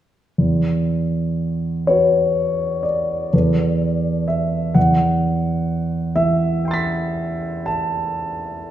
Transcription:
0.38 E2
1.87 F#4 B4 C#5
2.83 D5
3.33 E2 A4 B4
4.28 E5
4.74 E2 F#5
6.16 E3 E5
6.65 G5 C6
6.71 A6 B6
7.66 A5

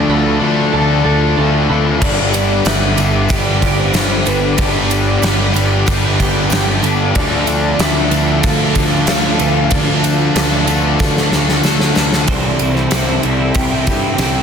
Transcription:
Already playing: D3 F3 A3 D4 F4 A4 D5 A5 D6
0.09 D2 D3 D4 B4
0.13 F4 A4
0.39 D2 D3 A3 D4 F4 A4
0.44 D4
0.73 D2 D3 D4 F4 A4
1.04 D2 A4
1.37 D2 D3 D4 F4 A4
1.69 D2 D4 F4 A4 B4
2.00 G1 G2 D3 G3 B3 D4 G4 B4 D5 B5 D6, kick, crash, tambourine
2.33 ride, tambourine
2.65 G1 G3 B3 D4 B4 E5, snare, ride, tambourine
2.96 G1 G2 D3 G3 B4, ride, tambourine
3.00 B3 D4
3.29 G1 G3 B3 D4 G4 D5, kick, ride, tambourine
3.34 B4
3.61 G1 G4, kick, ride, tambourine
3.80 C5
3.93 G1 G3 B3 D4 G4 B4, snare, ride, tambourine
4.25 G1 B3 D4 A4 B4, ride, tambourine
4.57 G1 G2 D3 G3 B3 D4 B4 D5, kick, ride, tambourine
4.90 ride, tambourine
5.22 G1 G3 B3 D4 B4, snare, ride, tambourine
5.26 B4
5.54 G1 D3 G3 B3 B4, ride, tambourine
5.58 G2 D4
5.86 G1 G3 B3 D4 G4, kick, ride, tambourine
5.91 B4
6.19 G1 G4, kick, ride, tambourine
6.50 G1 G3 B3 D4 G4, snare, ride, tambourine
6.55 B4
6.82 G1 B3 A4 B4, ride, tambourine
6.87 D4
7.13 D2 D3 F3 A3 D4 F4 A4 D5 A5, kick, ride, tambourine
7.18 F4 A4 D5
7.47 ride, tambourine
7.79 D2 D3 D4 F4 B4 E5, snare, ride, tambourine
7.84 A4
8.10 D2 D3 A3 D4 F4 A4, ride, tambourine
8.15 D4
8.43 D2 D3 D4 F4 A4 F5, kick, ride, tambourine
8.48 A4
8.75 D2 A4, kick, ride, tambourine
9.07 D2 D3 D4 F4 A4, snare, ride, tambourine
9.12 A4
9.39 D2 D4 F4 A4 B4, ride, tambourine
9.70 D2 D3 A3 D4 F4 D5, kick, ride, tambourine
9.74 A4
10.04 ride, tambourine
10.35 D2 D3 D4 F4 A4 B4, snare, ride, tambourine
10.66 D2 A3 D4 F4 A4, ride, tambourine
10.70 D3 D4
10.98 D2 D3 D4 F4 A4, kick, snare, tambourine
11.17 snare
11.31 D2 A4, snare, tambourine
11.49 snare
11.62 D2 D3 D4 F4 A4, snare, tambourine
11.66 A4
11.80 snare
11.95 D2 D4 F4 A4 B4, snare, tambourine
12.12 snare
12.27 C2 C3 E3 G3 C4 E4 A4 C5 D5 G5 C6 E6, kick, ride
12.59 C2 E3 G3 C4 E4, ride, tambourine
12.74 G3 C4 E4 C5, snare
12.91 C2 C3 E3 G3 C4 A4, snare, ride, tambourine
12.95 E4
13.07 G3 C4 E4
13.22 C2 E3 G3 C4 D5, ride, tambourine
13.27 E4
13.40 C4 E4
13.44 G3
13.53 C2 G4 E5, kick, ride, tambourine
13.72 G3 C4 E4
13.86 G2 E3 G3 C4 E4 G4, kick, ride, tambourine
14.03 G3 C4 E4
14.14 G5
14.18 C2 C3 E3 G3 C4 E4 G4, snare, ride, tambourine

